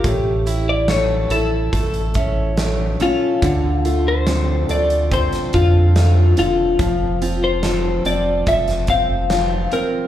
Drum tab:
HH |x-x-x-x-xxx-x-x-|x-x-x-xxxxx-x-x-|x-x-x-x-xxx-x-x-|
SD |----o-------o---|----o----o--o---|----o----o--o---|
BD |o-------o-o-----|o-------o-o-----|o-------o-o-----|